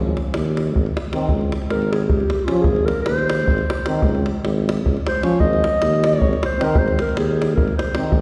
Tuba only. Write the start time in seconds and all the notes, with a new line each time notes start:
Already playing: G#1
0.34 D#2
0.75 G#1
1.30 C#2
1.71 G#1
2.11 C#2
2.66 G#1
3.07 D#2
3.47 G#1
4.03 C#2
4.44 G#1
4.84 C#2
5.40 G#1
5.82 D#2
6.22 G#1
6.76 G#1
7.16 D#2
7.58 G#1
8.11 G#1